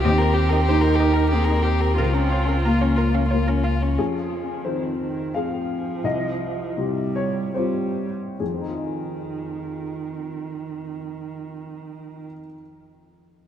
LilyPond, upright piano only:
\new Staff \with { instrumentName = "Upright piano" } { \time 3/4 \key f \minor \tempo 4 = 86 << { r2. | r2. | aes'4 c''4 f''4 | ees''4. des''8 c''4 |
<f, f c' ees' f' aes' ees''>2.~ | <f, f c' ees' f' aes' ees''>2. | } \\ { ees,4 <bes ees' g'>4 <bes ees' g'>4 | des,4 <bes f' bes'>4 <bes f' bes'>4 | f,4 <c' f' aes'>4 <c' f' aes'>4 | c,4 <c f' g'>4 <c' f' g'>4 |
r2. | r2. | } >> }